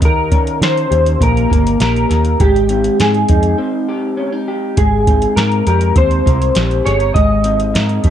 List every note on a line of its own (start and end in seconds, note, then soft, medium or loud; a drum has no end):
0.00 0.50 D#2 loud
0.00 3.51 D#3 medium
0.00 0.35 G4 medium
0.00 0.62 A#4 medium
0.00 kick loud
0.00 closed hi-hat medium
0.05 0.59 A#4 loud
0.32 2.46 C#4 medium
0.32 kick loud
0.32 closed hi-hat medium
0.47 closed hi-hat medium
0.62 0.85 D#3 loud
0.62 1.49 A#4 medium
0.62 1.22 C5 loud
0.62 snare loud
0.62 closed hi-hat medium
0.77 closed hi-hat soft
0.91 1.15 D#2 medium
0.91 1.80 G4 medium
0.91 closed hi-hat medium
1.06 closed hi-hat medium
1.21 1.45 A#1 loud
1.21 2.39 A#3 medium
1.21 1.77 A#4 loud
1.21 kick medium
1.21 closed hi-hat medium
1.37 closed hi-hat soft
1.50 1.75 G1 loud
1.50 2.08 A#4 medium
1.50 kick loud
1.50 closed hi-hat medium
1.67 closed hi-hat medium
1.80 2.04 A#1 medium
1.80 3.29 G4 medium
1.80 2.42 A#4 loud
1.80 snare loud
1.80 closed hi-hat loud
1.96 closed hi-hat soft
2.09 2.34 D#2 medium
2.09 2.46 A#4 medium
2.09 snare soft
2.09 closed hi-hat medium
2.25 closed hi-hat soft
2.40 2.88 G#1 loud
2.40 4.77 G#3 medium
2.40 3.00 G4 medium
2.40 kick loud
2.40 closed hi-hat medium
2.56 closed hi-hat soft
2.69 3.58 C4 medium
2.69 closed hi-hat medium
2.84 closed hi-hat medium
3.00 3.24 G#2 loud
3.00 3.55 G#4 medium
3.00 snare loud
3.00 closed hi-hat medium
3.14 closed hi-hat soft
3.29 3.53 F2 medium
3.29 4.17 D#4 medium
3.29 kick medium
3.29 closed hi-hat medium
3.43 closed hi-hat medium
3.58 5.08 C4 medium
3.89 4.47 G4 medium
4.17 4.32 C#4 medium
4.32 4.83 D#4 soft
4.48 5.37 G4 medium
4.77 5.25 G#1 loud
4.77 7.13 G#3 medium
4.77 5.39 G#4 medium
4.77 kick loud
4.77 closed hi-hat medium
5.07 5.94 C4 medium
5.07 kick loud
5.07 closed hi-hat medium
5.22 closed hi-hat medium
5.36 5.61 G#2 loud
5.36 5.66 A#4 medium
5.36 6.26 A#4 medium
5.36 snare loud
5.36 closed hi-hat medium
5.52 closed hi-hat soft
5.67 5.91 F2 loud
5.67 6.55 G4 medium
5.67 5.97 A#4 medium
5.67 closed hi-hat medium
5.81 closed hi-hat medium
5.96 6.20 D#2 loud
5.96 7.43 C4 medium
5.96 6.82 C5 medium
5.96 kick medium
5.96 closed hi-hat medium
6.11 closed hi-hat soft
6.26 6.50 C2 medium
6.26 6.85 A#4 medium
6.26 kick medium
6.26 closed hi-hat medium
6.42 closed hi-hat medium
6.55 6.80 A#1 loud
6.55 8.04 G4 medium
6.55 snare loud
6.55 closed hi-hat loud
6.71 closed hi-hat soft
6.85 7.10 G1 loud
6.85 6.99 G#4 medium
6.85 7.14 C#5 loud
6.85 snare soft
6.85 closed hi-hat medium
6.99 7.73 A#4 medium
6.99 closed hi-hat soft
7.14 7.77 G#1 loud
7.14 8.10 G#3 medium
7.14 8.10 D#5 loud
7.14 kick loud
7.14 closed hi-hat medium
7.44 8.10 C4 medium
7.44 closed hi-hat medium
7.60 closed hi-hat medium
7.74 7.98 G#2 loud
7.74 8.10 A#4 medium
7.74 snare loud
7.74 closed hi-hat loud
7.89 closed hi-hat soft
8.04 8.10 F2 medium
8.04 8.10 G4 medium
8.04 kick medium
8.04 closed hi-hat medium